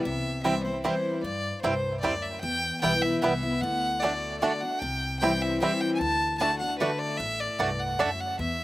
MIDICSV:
0, 0, Header, 1, 6, 480
1, 0, Start_track
1, 0, Tempo, 397272
1, 59, Time_signature, 3, 2, 24, 8
1, 10438, End_track
2, 0, Start_track
2, 0, Title_t, "Fiddle"
2, 0, Program_c, 0, 110
2, 50, Note_on_c, 0, 76, 101
2, 500, Note_off_c, 0, 76, 0
2, 520, Note_on_c, 0, 76, 99
2, 762, Note_off_c, 0, 76, 0
2, 768, Note_on_c, 0, 72, 85
2, 991, Note_off_c, 0, 72, 0
2, 1020, Note_on_c, 0, 72, 82
2, 1466, Note_off_c, 0, 72, 0
2, 1488, Note_on_c, 0, 74, 100
2, 1940, Note_off_c, 0, 74, 0
2, 1950, Note_on_c, 0, 72, 95
2, 2410, Note_off_c, 0, 72, 0
2, 2423, Note_on_c, 0, 74, 96
2, 2686, Note_on_c, 0, 76, 97
2, 2704, Note_off_c, 0, 74, 0
2, 2904, Note_off_c, 0, 76, 0
2, 2912, Note_on_c, 0, 79, 111
2, 3371, Note_off_c, 0, 79, 0
2, 3397, Note_on_c, 0, 79, 113
2, 3644, Note_on_c, 0, 76, 102
2, 3662, Note_off_c, 0, 79, 0
2, 3869, Note_off_c, 0, 76, 0
2, 3876, Note_on_c, 0, 76, 99
2, 4366, Note_on_c, 0, 78, 115
2, 4385, Note_off_c, 0, 76, 0
2, 4834, Note_on_c, 0, 74, 99
2, 4852, Note_off_c, 0, 78, 0
2, 5305, Note_off_c, 0, 74, 0
2, 5312, Note_on_c, 0, 74, 95
2, 5568, Note_on_c, 0, 78, 100
2, 5586, Note_off_c, 0, 74, 0
2, 5790, Note_on_c, 0, 79, 118
2, 5808, Note_off_c, 0, 78, 0
2, 6267, Note_off_c, 0, 79, 0
2, 6274, Note_on_c, 0, 79, 107
2, 6546, Note_on_c, 0, 76, 100
2, 6564, Note_off_c, 0, 79, 0
2, 6766, Note_off_c, 0, 76, 0
2, 6774, Note_on_c, 0, 76, 101
2, 7019, Note_on_c, 0, 79, 98
2, 7037, Note_off_c, 0, 76, 0
2, 7171, Note_off_c, 0, 79, 0
2, 7178, Note_on_c, 0, 80, 92
2, 7233, Note_on_c, 0, 81, 121
2, 7252, Note_off_c, 0, 80, 0
2, 7703, Note_off_c, 0, 81, 0
2, 7711, Note_on_c, 0, 81, 111
2, 7953, Note_off_c, 0, 81, 0
2, 7960, Note_on_c, 0, 78, 103
2, 8188, Note_off_c, 0, 78, 0
2, 8197, Note_on_c, 0, 71, 95
2, 8440, Note_on_c, 0, 74, 106
2, 8458, Note_off_c, 0, 71, 0
2, 8666, Note_on_c, 0, 76, 117
2, 8684, Note_off_c, 0, 74, 0
2, 8942, Note_on_c, 0, 74, 104
2, 8960, Note_off_c, 0, 76, 0
2, 9411, Note_on_c, 0, 78, 100
2, 9429, Note_off_c, 0, 74, 0
2, 9663, Note_on_c, 0, 76, 105
2, 9681, Note_off_c, 0, 78, 0
2, 9913, Note_on_c, 0, 78, 102
2, 9931, Note_off_c, 0, 76, 0
2, 10138, Note_off_c, 0, 78, 0
2, 10145, Note_on_c, 0, 76, 110
2, 10438, Note_off_c, 0, 76, 0
2, 10438, End_track
3, 0, Start_track
3, 0, Title_t, "Mandolin"
3, 0, Program_c, 1, 25
3, 532, Note_on_c, 1, 60, 90
3, 539, Note_on_c, 1, 72, 89
3, 540, Note_on_c, 1, 64, 90
3, 546, Note_on_c, 1, 79, 91
3, 649, Note_off_c, 1, 60, 0
3, 652, Note_off_c, 1, 72, 0
3, 653, Note_off_c, 1, 64, 0
3, 656, Note_off_c, 1, 79, 0
3, 1015, Note_on_c, 1, 60, 85
3, 1019, Note_on_c, 1, 64, 93
3, 1022, Note_on_c, 1, 72, 98
3, 1030, Note_on_c, 1, 79, 94
3, 1131, Note_off_c, 1, 60, 0
3, 1133, Note_off_c, 1, 64, 0
3, 1134, Note_off_c, 1, 72, 0
3, 1138, Note_off_c, 1, 79, 0
3, 1972, Note_on_c, 1, 60, 88
3, 1976, Note_on_c, 1, 64, 85
3, 1980, Note_on_c, 1, 72, 102
3, 1984, Note_on_c, 1, 79, 103
3, 2089, Note_off_c, 1, 60, 0
3, 2091, Note_off_c, 1, 64, 0
3, 2093, Note_off_c, 1, 72, 0
3, 2095, Note_off_c, 1, 79, 0
3, 2450, Note_on_c, 1, 60, 86
3, 2456, Note_on_c, 1, 64, 89
3, 2461, Note_on_c, 1, 72, 102
3, 2465, Note_on_c, 1, 79, 113
3, 2568, Note_off_c, 1, 60, 0
3, 2571, Note_off_c, 1, 64, 0
3, 2574, Note_off_c, 1, 72, 0
3, 2576, Note_off_c, 1, 79, 0
3, 3407, Note_on_c, 1, 59, 83
3, 3410, Note_on_c, 1, 64, 89
3, 3414, Note_on_c, 1, 71, 102
3, 3422, Note_on_c, 1, 79, 104
3, 3527, Note_off_c, 1, 59, 0
3, 3529, Note_off_c, 1, 64, 0
3, 3530, Note_off_c, 1, 71, 0
3, 3535, Note_off_c, 1, 79, 0
3, 3890, Note_on_c, 1, 59, 97
3, 3895, Note_on_c, 1, 64, 91
3, 3899, Note_on_c, 1, 71, 102
3, 3902, Note_on_c, 1, 79, 89
3, 4008, Note_off_c, 1, 59, 0
3, 4011, Note_off_c, 1, 64, 0
3, 4013, Note_off_c, 1, 71, 0
3, 4014, Note_off_c, 1, 79, 0
3, 4855, Note_on_c, 1, 57, 82
3, 4860, Note_on_c, 1, 66, 88
3, 4862, Note_on_c, 1, 74, 89
3, 4868, Note_on_c, 1, 81, 100
3, 4971, Note_off_c, 1, 57, 0
3, 4973, Note_off_c, 1, 66, 0
3, 4975, Note_off_c, 1, 74, 0
3, 4978, Note_off_c, 1, 81, 0
3, 5341, Note_on_c, 1, 57, 97
3, 5342, Note_on_c, 1, 66, 81
3, 5346, Note_on_c, 1, 74, 94
3, 5350, Note_on_c, 1, 81, 105
3, 5454, Note_off_c, 1, 57, 0
3, 5455, Note_off_c, 1, 66, 0
3, 5457, Note_off_c, 1, 74, 0
3, 5459, Note_off_c, 1, 81, 0
3, 6299, Note_on_c, 1, 60, 79
3, 6304, Note_on_c, 1, 64, 86
3, 6308, Note_on_c, 1, 72, 96
3, 6314, Note_on_c, 1, 79, 90
3, 6413, Note_off_c, 1, 60, 0
3, 6416, Note_off_c, 1, 64, 0
3, 6418, Note_off_c, 1, 72, 0
3, 6421, Note_off_c, 1, 79, 0
3, 6784, Note_on_c, 1, 60, 83
3, 6789, Note_on_c, 1, 64, 93
3, 6793, Note_on_c, 1, 72, 93
3, 6795, Note_on_c, 1, 79, 102
3, 6896, Note_off_c, 1, 60, 0
3, 6899, Note_off_c, 1, 64, 0
3, 6900, Note_off_c, 1, 72, 0
3, 6901, Note_off_c, 1, 79, 0
3, 7737, Note_on_c, 1, 57, 94
3, 7742, Note_on_c, 1, 66, 91
3, 7745, Note_on_c, 1, 74, 94
3, 7749, Note_on_c, 1, 81, 94
3, 7853, Note_off_c, 1, 57, 0
3, 7855, Note_off_c, 1, 66, 0
3, 7857, Note_off_c, 1, 74, 0
3, 7858, Note_off_c, 1, 81, 0
3, 8217, Note_on_c, 1, 57, 92
3, 8220, Note_on_c, 1, 66, 93
3, 8226, Note_on_c, 1, 74, 96
3, 8232, Note_on_c, 1, 81, 102
3, 8333, Note_off_c, 1, 57, 0
3, 8334, Note_off_c, 1, 66, 0
3, 8337, Note_off_c, 1, 74, 0
3, 8340, Note_off_c, 1, 81, 0
3, 9167, Note_on_c, 1, 57, 90
3, 9172, Note_on_c, 1, 66, 101
3, 9175, Note_on_c, 1, 74, 94
3, 9180, Note_on_c, 1, 81, 92
3, 9288, Note_off_c, 1, 57, 0
3, 9290, Note_off_c, 1, 66, 0
3, 9292, Note_off_c, 1, 74, 0
3, 9294, Note_off_c, 1, 81, 0
3, 9651, Note_on_c, 1, 57, 86
3, 9655, Note_on_c, 1, 66, 98
3, 9661, Note_on_c, 1, 74, 102
3, 9666, Note_on_c, 1, 81, 102
3, 9770, Note_off_c, 1, 57, 0
3, 9772, Note_off_c, 1, 66, 0
3, 9775, Note_off_c, 1, 74, 0
3, 9777, Note_off_c, 1, 81, 0
3, 10438, End_track
4, 0, Start_track
4, 0, Title_t, "Five-string banjo"
4, 0, Program_c, 2, 105
4, 541, Note_on_c, 2, 55, 69
4, 544, Note_on_c, 2, 60, 67
4, 551, Note_on_c, 2, 64, 63
4, 651, Note_off_c, 2, 55, 0
4, 653, Note_off_c, 2, 60, 0
4, 653, Note_off_c, 2, 64, 0
4, 1022, Note_on_c, 2, 55, 68
4, 1030, Note_on_c, 2, 60, 70
4, 1031, Note_on_c, 2, 64, 67
4, 1132, Note_off_c, 2, 55, 0
4, 1134, Note_off_c, 2, 60, 0
4, 1135, Note_off_c, 2, 64, 0
4, 1982, Note_on_c, 2, 55, 67
4, 1987, Note_on_c, 2, 60, 64
4, 1990, Note_on_c, 2, 64, 64
4, 2091, Note_off_c, 2, 55, 0
4, 2094, Note_off_c, 2, 60, 0
4, 2094, Note_off_c, 2, 64, 0
4, 2465, Note_on_c, 2, 55, 66
4, 2472, Note_on_c, 2, 64, 66
4, 2473, Note_on_c, 2, 60, 71
4, 2574, Note_off_c, 2, 55, 0
4, 2575, Note_off_c, 2, 60, 0
4, 2576, Note_off_c, 2, 64, 0
4, 3421, Note_on_c, 2, 55, 65
4, 3426, Note_on_c, 2, 59, 62
4, 3429, Note_on_c, 2, 64, 65
4, 3531, Note_off_c, 2, 55, 0
4, 3533, Note_off_c, 2, 59, 0
4, 3535, Note_off_c, 2, 64, 0
4, 3909, Note_on_c, 2, 55, 70
4, 3916, Note_on_c, 2, 59, 72
4, 3917, Note_on_c, 2, 64, 74
4, 4015, Note_off_c, 2, 55, 0
4, 4017, Note_off_c, 2, 59, 0
4, 4019, Note_off_c, 2, 64, 0
4, 4872, Note_on_c, 2, 57, 67
4, 4877, Note_on_c, 2, 62, 63
4, 4887, Note_off_c, 2, 62, 0
4, 4887, Note_on_c, 2, 62, 67
4, 4976, Note_off_c, 2, 57, 0
4, 4982, Note_off_c, 2, 62, 0
4, 5345, Note_on_c, 2, 57, 70
4, 5350, Note_on_c, 2, 62, 69
4, 5353, Note_off_c, 2, 62, 0
4, 5353, Note_on_c, 2, 62, 75
4, 5453, Note_off_c, 2, 57, 0
4, 5457, Note_off_c, 2, 62, 0
4, 6316, Note_on_c, 2, 55, 64
4, 6326, Note_on_c, 2, 60, 66
4, 6326, Note_on_c, 2, 64, 68
4, 6419, Note_off_c, 2, 55, 0
4, 6422, Note_off_c, 2, 60, 0
4, 6424, Note_off_c, 2, 64, 0
4, 6798, Note_on_c, 2, 55, 67
4, 6805, Note_on_c, 2, 60, 69
4, 6807, Note_on_c, 2, 64, 72
4, 6901, Note_off_c, 2, 55, 0
4, 6901, Note_off_c, 2, 60, 0
4, 6904, Note_off_c, 2, 64, 0
4, 7742, Note_on_c, 2, 57, 63
4, 7748, Note_on_c, 2, 62, 68
4, 7752, Note_off_c, 2, 62, 0
4, 7752, Note_on_c, 2, 62, 65
4, 7852, Note_off_c, 2, 57, 0
4, 7857, Note_off_c, 2, 62, 0
4, 8228, Note_on_c, 2, 57, 73
4, 8234, Note_on_c, 2, 62, 68
4, 8235, Note_off_c, 2, 62, 0
4, 8235, Note_on_c, 2, 62, 71
4, 8259, Note_off_c, 2, 62, 0
4, 8335, Note_off_c, 2, 57, 0
4, 9180, Note_on_c, 2, 57, 67
4, 9185, Note_on_c, 2, 62, 66
4, 9192, Note_off_c, 2, 62, 0
4, 9192, Note_on_c, 2, 62, 67
4, 9292, Note_off_c, 2, 57, 0
4, 9297, Note_off_c, 2, 62, 0
4, 9657, Note_on_c, 2, 57, 68
4, 9663, Note_on_c, 2, 62, 73
4, 9665, Note_off_c, 2, 62, 0
4, 9665, Note_on_c, 2, 62, 74
4, 9770, Note_off_c, 2, 57, 0
4, 9773, Note_off_c, 2, 62, 0
4, 10438, End_track
5, 0, Start_track
5, 0, Title_t, "Steel-string acoustic guitar"
5, 0, Program_c, 3, 25
5, 64, Note_on_c, 3, 48, 94
5, 536, Note_on_c, 3, 52, 88
5, 539, Note_on_c, 3, 55, 88
5, 552, Note_on_c, 3, 60, 100
5, 560, Note_on_c, 3, 64, 100
5, 767, Note_off_c, 3, 64, 0
5, 778, Note_off_c, 3, 52, 0
5, 780, Note_off_c, 3, 55, 0
5, 781, Note_on_c, 3, 64, 61
5, 786, Note_off_c, 3, 60, 0
5, 810, Note_on_c, 3, 60, 48
5, 976, Note_off_c, 3, 48, 0
5, 1005, Note_off_c, 3, 64, 0
5, 1014, Note_on_c, 3, 52, 91
5, 1020, Note_off_c, 3, 60, 0
5, 1028, Note_on_c, 3, 55, 82
5, 1033, Note_on_c, 3, 60, 95
5, 1041, Note_on_c, 3, 64, 88
5, 1474, Note_off_c, 3, 52, 0
5, 1481, Note_off_c, 3, 55, 0
5, 1483, Note_off_c, 3, 60, 0
5, 1487, Note_off_c, 3, 64, 0
5, 1504, Note_on_c, 3, 43, 91
5, 1969, Note_off_c, 3, 43, 0
5, 1983, Note_on_c, 3, 43, 96
5, 2438, Note_off_c, 3, 43, 0
5, 2456, Note_on_c, 3, 42, 92
5, 2915, Note_off_c, 3, 42, 0
5, 2933, Note_on_c, 3, 40, 93
5, 3407, Note_on_c, 3, 52, 89
5, 3423, Note_on_c, 3, 55, 90
5, 3431, Note_on_c, 3, 59, 98
5, 3436, Note_on_c, 3, 64, 106
5, 3643, Note_off_c, 3, 64, 0
5, 3654, Note_off_c, 3, 52, 0
5, 3658, Note_on_c, 3, 64, 62
5, 3662, Note_off_c, 3, 55, 0
5, 3666, Note_off_c, 3, 59, 0
5, 3688, Note_on_c, 3, 59, 49
5, 3851, Note_off_c, 3, 40, 0
5, 3884, Note_off_c, 3, 64, 0
5, 3890, Note_on_c, 3, 52, 95
5, 3896, Note_off_c, 3, 59, 0
5, 3904, Note_on_c, 3, 55, 94
5, 3910, Note_on_c, 3, 59, 93
5, 3916, Note_on_c, 3, 64, 91
5, 4127, Note_off_c, 3, 64, 0
5, 4136, Note_off_c, 3, 52, 0
5, 4141, Note_on_c, 3, 64, 66
5, 4143, Note_off_c, 3, 55, 0
5, 4146, Note_off_c, 3, 59, 0
5, 4172, Note_on_c, 3, 59, 60
5, 4366, Note_off_c, 3, 64, 0
5, 4381, Note_off_c, 3, 59, 0
5, 4390, Note_on_c, 3, 50, 91
5, 4836, Note_off_c, 3, 50, 0
5, 4851, Note_on_c, 3, 50, 84
5, 4865, Note_on_c, 3, 57, 98
5, 4868, Note_on_c, 3, 62, 100
5, 4881, Note_on_c, 3, 66, 95
5, 5313, Note_off_c, 3, 50, 0
5, 5320, Note_off_c, 3, 57, 0
5, 5321, Note_off_c, 3, 62, 0
5, 5328, Note_off_c, 3, 66, 0
5, 5336, Note_on_c, 3, 50, 81
5, 5339, Note_on_c, 3, 57, 87
5, 5354, Note_on_c, 3, 62, 99
5, 5365, Note_on_c, 3, 66, 92
5, 5571, Note_off_c, 3, 66, 0
5, 5579, Note_off_c, 3, 50, 0
5, 5580, Note_off_c, 3, 57, 0
5, 5585, Note_on_c, 3, 66, 67
5, 5588, Note_off_c, 3, 62, 0
5, 5615, Note_on_c, 3, 62, 56
5, 5808, Note_off_c, 3, 66, 0
5, 5823, Note_off_c, 3, 62, 0
5, 5823, Note_on_c, 3, 48, 97
5, 6301, Note_on_c, 3, 52, 82
5, 6307, Note_on_c, 3, 55, 90
5, 6322, Note_on_c, 3, 60, 97
5, 6327, Note_on_c, 3, 64, 109
5, 6736, Note_off_c, 3, 48, 0
5, 6755, Note_off_c, 3, 52, 0
5, 6761, Note_off_c, 3, 55, 0
5, 6768, Note_off_c, 3, 60, 0
5, 6770, Note_on_c, 3, 52, 91
5, 6771, Note_off_c, 3, 64, 0
5, 6782, Note_on_c, 3, 55, 87
5, 6795, Note_on_c, 3, 60, 99
5, 6799, Note_on_c, 3, 64, 92
5, 7232, Note_off_c, 3, 52, 0
5, 7238, Note_off_c, 3, 55, 0
5, 7245, Note_off_c, 3, 60, 0
5, 7247, Note_off_c, 3, 64, 0
5, 7260, Note_on_c, 3, 50, 86
5, 7714, Note_off_c, 3, 50, 0
5, 7729, Note_on_c, 3, 50, 95
5, 7739, Note_on_c, 3, 57, 88
5, 7749, Note_on_c, 3, 62, 98
5, 7761, Note_on_c, 3, 66, 99
5, 7976, Note_off_c, 3, 50, 0
5, 7977, Note_off_c, 3, 66, 0
5, 7981, Note_off_c, 3, 57, 0
5, 7986, Note_off_c, 3, 62, 0
5, 7991, Note_on_c, 3, 66, 57
5, 8020, Note_on_c, 3, 62, 52
5, 8212, Note_off_c, 3, 66, 0
5, 8220, Note_off_c, 3, 62, 0
5, 8222, Note_on_c, 3, 50, 89
5, 8229, Note_on_c, 3, 57, 95
5, 8234, Note_on_c, 3, 62, 97
5, 8249, Note_on_c, 3, 66, 94
5, 8679, Note_off_c, 3, 50, 0
5, 8682, Note_off_c, 3, 57, 0
5, 8685, Note_off_c, 3, 62, 0
5, 8692, Note_off_c, 3, 66, 0
5, 8698, Note_on_c, 3, 45, 97
5, 9180, Note_on_c, 3, 43, 90
5, 9614, Note_off_c, 3, 45, 0
5, 9638, Note_off_c, 3, 43, 0
5, 9670, Note_on_c, 3, 42, 88
5, 10123, Note_off_c, 3, 42, 0
5, 10137, Note_on_c, 3, 40, 86
5, 10438, Note_off_c, 3, 40, 0
5, 10438, End_track
6, 0, Start_track
6, 0, Title_t, "Upright bass"
6, 0, Program_c, 4, 32
6, 65, Note_on_c, 4, 36, 85
6, 1020, Note_off_c, 4, 36, 0
6, 1492, Note_on_c, 4, 43, 84
6, 1813, Note_off_c, 4, 43, 0
6, 1976, Note_on_c, 4, 36, 88
6, 2386, Note_off_c, 4, 36, 0
6, 2457, Note_on_c, 4, 38, 82
6, 2866, Note_off_c, 4, 38, 0
6, 2936, Note_on_c, 4, 40, 93
6, 3256, Note_off_c, 4, 40, 0
6, 3414, Note_on_c, 4, 35, 87
6, 3824, Note_off_c, 4, 35, 0
6, 3894, Note_on_c, 4, 36, 82
6, 4305, Note_off_c, 4, 36, 0
6, 4374, Note_on_c, 4, 38, 95
6, 5333, Note_off_c, 4, 38, 0
6, 5819, Note_on_c, 4, 36, 88
6, 6777, Note_off_c, 4, 36, 0
6, 7253, Note_on_c, 4, 38, 95
6, 8212, Note_off_c, 4, 38, 0
6, 8691, Note_on_c, 4, 33, 88
6, 9013, Note_off_c, 4, 33, 0
6, 9173, Note_on_c, 4, 36, 87
6, 9584, Note_off_c, 4, 36, 0
6, 9657, Note_on_c, 4, 38, 85
6, 10067, Note_off_c, 4, 38, 0
6, 10137, Note_on_c, 4, 40, 100
6, 10438, Note_off_c, 4, 40, 0
6, 10438, End_track
0, 0, End_of_file